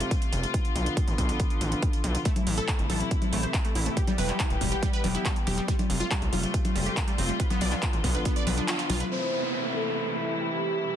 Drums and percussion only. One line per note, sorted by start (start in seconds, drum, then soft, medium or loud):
0.00 closed hi-hat soft
0.11 kick loud
0.11 closed hi-hat medium
0.22 closed hi-hat soft
0.33 closed hi-hat medium
0.43 closed hi-hat soft
0.54 kick loud
0.54 closed hi-hat medium
0.65 closed hi-hat soft
0.76 closed hi-hat medium
0.86 closed hi-hat soft
0.97 kick loud
0.97 closed hi-hat medium
1.08 closed hi-hat soft
1.18 kick medium
1.18 closed hi-hat medium
1.29 closed hi-hat soft
1.40 kick loud
1.40 closed hi-hat medium
1.50 closed hi-hat soft
1.61 closed hi-hat medium
1.72 closed hi-hat soft
1.82 kick loud
1.82 closed hi-hat medium
1.93 closed hi-hat soft
2.04 closed hi-hat medium
2.15 closed hi-hat soft
2.25 kick loud
2.25 closed hi-hat medium
2.36 closed hi-hat soft
2.36 high conga medium
2.47 open hi-hat loud
2.57 closed hi-hat soft
2.68 kick loud
2.68 clap loud
2.68 closed hi-hat medium
2.79 closed hi-hat soft
2.90 open hi-hat loud
2.90 high conga medium
3.00 closed hi-hat soft
3.11 kick loud
3.11 closed hi-hat medium
3.22 closed hi-hat soft
3.22 high conga medium
3.33 open hi-hat loud
3.43 closed hi-hat soft
3.54 kick loud
3.54 clap loud
3.54 closed hi-hat medium
3.65 closed hi-hat soft
3.75 open hi-hat loud
3.86 closed hi-hat soft
3.97 kick loud
3.97 closed hi-hat medium
4.07 closed hi-hat medium
4.07 high conga medium
4.18 open hi-hat loud
4.29 clap soft
4.29 closed hi-hat soft
4.40 kick loud
4.40 clap loud
4.40 closed hi-hat medium
4.50 closed hi-hat medium
4.61 kick medium
4.61 open hi-hat loud
4.72 closed hi-hat soft
4.83 kick loud
4.83 closed hi-hat medium
4.93 closed hi-hat soft
5.04 open hi-hat medium
5.04 high conga medium
5.15 closed hi-hat soft
5.25 kick loud
5.25 clap loud
5.25 closed hi-hat medium
5.36 closed hi-hat medium
5.47 open hi-hat loud
5.47 high conga medium
5.58 closed hi-hat medium
5.68 kick loud
5.68 closed hi-hat medium
5.79 closed hi-hat medium
5.79 high conga medium
5.90 open hi-hat medium
6.01 closed hi-hat medium
6.11 kick loud
6.11 clap loud
6.11 closed hi-hat medium
6.22 closed hi-hat medium
6.33 open hi-hat loud
6.33 high conga medium
6.43 closed hi-hat soft
6.54 kick loud
6.54 closed hi-hat medium
6.65 closed hi-hat soft
6.65 high conga medium
6.76 open hi-hat loud
6.86 closed hi-hat soft
6.97 kick loud
6.97 clap loud
6.97 closed hi-hat medium
7.08 closed hi-hat medium
7.18 open hi-hat loud
7.29 closed hi-hat medium
7.40 kick loud
7.40 closed hi-hat medium
7.50 closed hi-hat medium
7.50 high conga medium
7.61 open hi-hat loud
7.72 clap soft
7.72 closed hi-hat medium
7.82 kick loud
7.82 clap loud
7.82 closed hi-hat medium
7.93 closed hi-hat medium
8.04 kick medium
8.04 open hi-hat loud
8.15 closed hi-hat medium
8.25 kick loud
8.25 closed hi-hat medium
8.36 closed hi-hat medium
8.47 open hi-hat loud
8.47 high conga medium
8.57 closed hi-hat medium
8.68 clap loud
8.68 closed hi-hat medium
8.79 closed hi-hat medium
8.90 open hi-hat loud
8.90 high conga medium
9.00 closed hi-hat medium